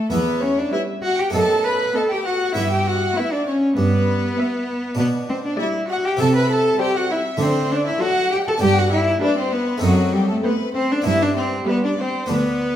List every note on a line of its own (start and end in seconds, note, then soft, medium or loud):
0.00 0.11 A3 medium
0.10 0.60 E2 medium
0.10 0.60 E2 soft
0.10 1.29 B3 soft
0.10 0.44 B3 medium
0.10 1.30 E4 soft
0.10 0.42 B4 medium
0.42 0.60 C#4 medium
0.42 0.58 C#5 medium
0.59 0.72 D4 medium
0.59 0.73 D5 soft
0.72 1.18 G3 soft
0.72 0.80 E4 medium
0.72 1.18 B4 soft
0.72 0.81 E5 medium
1.03 1.21 F#4 medium
1.03 1.19 F#5 medium
1.19 1.33 G4 medium
1.19 1.34 G5 medium
1.30 1.82 F#2 medium
1.30 2.50 A3 soft
1.30 2.51 B3 soft
1.30 2.52 D#4 soft
1.30 1.65 A4 medium
1.34 1.82 F#2 soft
1.34 1.64 A5 medium
1.64 1.97 B4 medium
1.64 1.96 B5 medium
1.94 2.40 B3 medium
1.94 2.13 A4 medium
1.94 2.41 D#5 soft
1.94 2.01 A5 medium
2.09 2.27 G4 medium
2.09 2.25 G5 medium
2.25 2.54 F#4 medium
2.25 2.55 F#5 medium
2.54 3.04 G2 medium
2.54 3.04 G2 soft
2.54 4.94 B3 soft
2.54 2.70 E4 medium
2.54 4.94 E4 soft
2.54 2.71 E5 medium
2.71 2.88 G4 medium
2.71 2.85 G5 medium
2.87 3.18 F#4 medium
2.87 3.17 F#5 medium
3.16 3.62 B3 medium
3.16 3.34 E4 medium
3.16 3.61 E5 soft
3.16 3.31 E5 medium
3.32 3.47 D4 medium
3.32 3.46 D5 medium
3.47 3.77 C#4 medium
3.47 3.55 C#5 medium
3.77 4.24 G2 soft
3.77 4.25 G2 medium
3.77 4.96 B3 medium
3.77 4.96 B4 medium
4.38 4.83 B3 medium
4.38 4.83 E5 medium
4.95 5.46 B2 soft
4.95 5.06 B3 medium
4.95 6.14 D4 soft
4.95 5.06 B4 medium
4.99 5.47 B2 medium
5.29 5.35 C4 medium
5.29 5.44 C5 medium
5.45 5.59 D4 medium
5.45 5.59 D5 medium
5.59 6.04 G3 medium
5.59 5.88 E4 medium
5.59 6.05 D5 medium
5.59 5.67 E5 medium
5.88 6.06 F#4 medium
5.88 5.96 F#5 medium
6.05 6.21 G4 medium
6.05 6.12 G5 medium
6.17 6.67 C3 medium
6.17 6.67 C3 soft
6.17 7.35 C4 soft
6.17 7.36 E4 soft
6.17 6.35 A4 medium
6.21 6.27 A5 medium
6.36 6.50 B4 medium
6.36 6.50 B5 medium
6.50 6.80 A4 medium
6.50 6.81 A5 medium
6.80 7.25 G3 medium
6.80 6.98 G4 medium
6.80 7.25 C5 medium
6.80 6.95 G5 medium
6.96 7.10 F#4 medium
6.96 7.10 F#5 medium
7.11 7.19 E4 medium
7.11 7.41 E5 medium
7.37 7.88 D3 soft
7.37 7.88 D3 medium
7.37 8.57 A3 soft
7.37 7.73 C4 medium
7.37 8.57 D4 soft
7.37 7.71 C5 medium
7.72 7.86 D4 medium
7.72 7.87 D5 medium
7.87 8.03 E4 medium
7.87 8.02 E5 medium
8.01 8.47 F#3 medium
8.01 8.31 F#4 medium
8.01 8.47 A4 soft
8.01 8.32 F#5 medium
8.31 8.37 G4 medium
8.31 8.47 G5 medium
8.48 8.54 A4 medium
8.48 8.62 A5 medium
8.58 9.09 G2 medium
8.58 9.77 B3 soft
8.58 9.77 D4 soft
8.62 9.09 G2 soft
8.62 8.80 G4 medium
8.62 8.77 G5 medium
8.78 8.92 F#4 medium
8.78 8.92 F#5 medium
8.92 9.21 E4 medium
8.92 9.00 E5 medium
9.22 9.67 G3 medium
9.22 9.37 D4 medium
9.22 9.68 B4 medium
9.22 9.37 D5 medium
9.38 9.54 C4 medium
9.38 9.53 C5 medium
9.52 9.83 B3 medium
9.52 9.83 B4 medium
9.78 10.99 A3 soft
9.78 11.00 C4 soft
9.78 11.01 D#4 soft
9.82 10.30 F#2 soft
9.82 10.31 F#2 medium
9.82 10.15 F#3 medium
9.82 10.13 F#4 medium
10.13 10.28 G3 medium
10.13 10.29 G4 medium
10.29 10.37 A3 medium
10.29 10.35 A4 soft
10.44 10.89 A3 medium
10.44 10.53 B3 medium
10.44 10.74 B4 medium
10.44 10.90 C5 medium
10.74 10.93 C4 medium
10.74 10.89 C5 medium
10.91 11.05 D4 medium
10.91 11.06 D5 medium
11.02 11.54 G2 medium
11.02 12.24 B3 soft
11.02 12.24 D4 soft
11.06 11.54 G2 soft
11.06 11.24 E4 medium
11.06 11.12 E5 medium
11.22 11.36 D4 medium
11.22 11.27 D5 medium
11.36 11.67 C4 medium
11.36 11.44 C5 medium
11.67 12.13 G3 medium
11.67 11.82 B3 medium
11.67 11.82 B4 medium
11.67 12.14 B4 medium
11.83 11.90 D4 medium
11.83 11.98 D5 medium
11.98 12.29 C4 medium
11.98 12.30 C5 medium
12.26 12.76 D2 soft
12.26 12.76 D2 medium
12.26 12.76 B3 soft
12.26 12.76 B3 medium
12.26 12.76 D4 soft
12.31 12.76 B4 medium